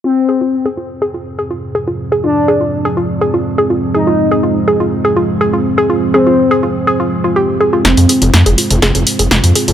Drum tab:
HH |----------------|----------------|----------------|----------------|
SD |----------------|----------------|----------------|----------------|
T2 |----------------|----------------|----------------|----------------|

HH |xxoxxxoxxxoxxxox|
SD |o---o---o---o---|
T2 |-o-----o-----o--|